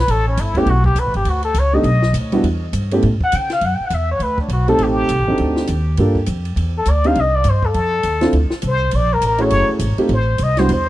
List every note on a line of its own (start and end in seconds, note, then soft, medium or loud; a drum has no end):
0.00 0.12 B4 loud
0.08 0.36 A1 medium
0.08 0.27 A4 medium
0.08 ride medium
0.27 0.42 C#4 medium
0.37 0.65 G1 medium
0.37 0.59 E4 medium
0.37 hi-hat pedal medium
0.37 ride medium
0.55 0.66 A3 medium
0.55 0.66 B3 medium
0.55 0.66 C#4 medium
0.55 0.66 E4 medium
0.55 0.66 G4 medium
0.55 0.71 G4 loud
0.55 kick medium
0.55 ride soft
0.66 0.94 B1 medium
0.66 0.85 F#4 medium
0.66 ride medium
0.84 1.00 G4 medium
0.84 kick medium
0.95 1.06 C#2 medium
0.95 1.15 B4 medium
0.95 hi-hat pedal medium
0.95 ride medium
1.06 1.14 A1 medium
1.14 1.24 G1 medium
1.14 1.31 G4 medium
1.14 ride soft
1.25 1.54 D2 medium
1.25 ride medium
1.29 1.44 F#4 medium
1.43 1.61 A4 loud
1.43 ride soft
1.54 1.83 C#2 medium
1.54 hi-hat pedal medium
1.54 ride medium
1.59 1.76 C#5 medium
1.73 1.83 A3 medium
1.73 1.84 B3 medium
1.73 1.84 D4 medium
1.73 1.84 D#4 medium
1.73 1.84 G4 medium
1.73 2.15 D#5 loud
1.83 2.13 B1 medium
1.83 ride medium
2.02 snare soft
2.13 2.42 D2 medium
2.13 hi-hat pedal medium
2.13 ride medium
2.32 2.43 G3 medium
2.32 2.43 B3 medium
2.32 2.43 D4 medium
2.32 2.43 E4 medium
2.32 2.43 F#4 medium
2.32 ride soft
2.43 2.72 E2 medium
2.43 ride medium
2.73 3.02 G2 medium
2.73 hi-hat pedal medium
2.73 ride medium
2.91 3.02 A3 medium
2.91 3.02 B3 medium
2.91 3.02 C#4 medium
2.91 3.02 E4 medium
2.91 3.03 G4 medium
2.91 ride medium
3.02 3.20 A2 medium
3.02 ride medium
3.20 3.37 F#5 loud
3.20 muted upright bass stroke soft
3.20 kick medium
3.32 3.61 C#3 medium
3.32 3.52 G5 loud
3.32 hi-hat pedal medium
3.32 ride medium
3.50 3.67 F5 loud
3.50 snare soft
3.50 ride soft
3.61 3.78 F#2 medium
3.61 ride medium
3.65 3.76 F#5 medium
3.75 3.88 G5 medium
3.80 muted upright bass stroke soft
3.86 3.96 F#5 medium
3.90 4.19 E2 medium
3.90 4.11 E5 medium
3.90 hi-hat pedal soft
3.90 ride medium
4.11 4.24 C#5 medium
4.19 4.48 D2 medium
4.19 4.40 B4 medium
4.19 ride medium
4.38 4.54 D4 medium
4.38 kick medium
4.48 4.78 B1 medium
4.48 hi-hat pedal soft
4.48 ride medium
4.53 4.69 F#4 medium
4.68 5.07 A3 medium
4.68 5.07 C4 medium
4.68 5.07 D#4 medium
4.68 5.07 G4 medium
4.68 5.07 A4 medium
4.68 4.85 A4 loud
4.68 ride soft
4.78 5.08 A1 medium
4.78 ride medium
4.83 5.40 G4 medium
5.09 5.19 C2 medium
5.09 hi-hat pedal medium
5.09 ride medium
5.19 5.28 A1 medium
5.28 5.38 G1 medium
5.28 5.66 C4 medium
5.28 5.66 D4 medium
5.28 5.66 D#4 medium
5.28 5.67 F#4 medium
5.28 5.67 A4 medium
5.38 5.68 D2 medium
5.38 ride soft
5.56 snare medium
5.67 5.97 D#2 medium
5.67 hi-hat pedal medium
5.67 ride medium
5.97 6.26 G2 medium
5.97 6.14 A#3 medium
5.97 6.14 D4 medium
5.97 6.15 F4 medium
5.97 6.15 G4 medium
5.97 6.15 A4 medium
5.97 ride medium
6.15 kick soft
6.26 6.56 F2 medium
6.26 hi-hat pedal medium
6.26 ride medium
6.45 ride soft
6.56 6.85 E2 medium
6.56 ride medium
6.78 6.91 A4 medium
6.85 7.15 D2 medium
6.85 hi-hat pedal medium
6.85 ride medium
6.90 7.08 D5 medium
7.04 7.15 C4 medium
7.04 7.15 D4 medium
7.04 7.15 D#4 medium
7.04 7.15 G4 medium
7.04 7.15 C5 medium
7.04 7.21 F5 loud
7.04 ride soft
7.15 7.44 C2 medium
7.15 ride medium
7.20 7.37 D#5 loud
7.35 7.51 D5 loud
7.44 7.73 G2 medium
7.44 hi-hat pedal medium
7.44 ride medium
7.50 7.67 C5 medium
7.63 8.35 A4 medium
7.63 kick medium
7.74 8.03 F2 medium
7.74 ride medium
8.03 8.32 D#2 medium
8.03 hi-hat pedal soft
8.03 ride medium
8.21 8.32 C4 medium
8.21 8.32 D4 medium
8.21 8.32 E4 medium
8.21 8.32 F4 medium
8.21 8.33 A4 medium
8.21 snare medium
8.21 ride soft
8.33 8.50 D2 medium
8.33 ride medium
8.50 muted upright bass stroke soft
8.50 snare medium
8.62 8.92 C2 medium
8.62 hi-hat pedal medium
8.62 ride medium
8.67 8.97 C5 medium
8.91 9.21 A#1 medium
8.91 ride medium
8.96 9.15 D5 loud
9.13 9.23 A#4 medium
9.21 9.50 A1 medium
9.21 hi-hat pedal medium
9.21 ride medium
9.26 9.43 A#4 medium
9.38 9.78 A3 medium
9.38 9.78 C#4 medium
9.38 9.78 E4 medium
9.38 9.78 F#4 medium
9.38 9.78 G#4 medium
9.38 9.70 C#5 loud
9.38 ride soft
9.50 9.68 F#1 medium
9.50 ride medium
9.69 muted upright bass stroke soft
9.79 9.97 G#1 medium
9.79 hi-hat pedal medium
9.79 ride medium
9.97 10.09 A3 medium
9.97 10.09 C4 medium
9.97 10.09 D#4 medium
9.97 10.09 F4 medium
9.97 10.09 G4 medium
9.97 muted upright bass stroke soft
9.97 ride soft
10.09 10.38 A1 medium
10.09 ride medium
10.13 10.44 C5 medium
10.38 10.68 C2 medium
10.38 hi-hat pedal medium
10.38 ride medium
10.43 10.60 D#5 medium
10.57 10.69 G3 medium
10.57 10.69 B3 medium
10.57 10.69 D4 medium
10.57 10.69 E4 medium
10.57 10.69 F#4 medium
10.57 10.70 C5 medium
10.57 snare soft
10.57 ride soft
10.69 10.89 E2 medium
10.69 ride medium
10.73 10.88 C5 medium